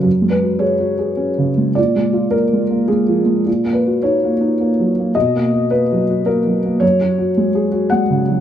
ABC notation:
X:1
M:3/4
L:1/8
Q:1/4=107
K:F#
V:1 name="Felt piano"
z B c4 | =d2 A2 G2 | z B c4 | d2 B2 A2 |
c4 f2 |]
V:2 name="Felt piano"
(3F,, G, F (3G F G (3C C, G, | (3A,, G, E (3A, G, A, (3G, E, G, | (3A,, A, F (3D A, D (3A, F, A, | (3B,, A, F (3A, F, F (3A, F, A, |
(3F,, F, F (3G, G F (3G, C, F, |]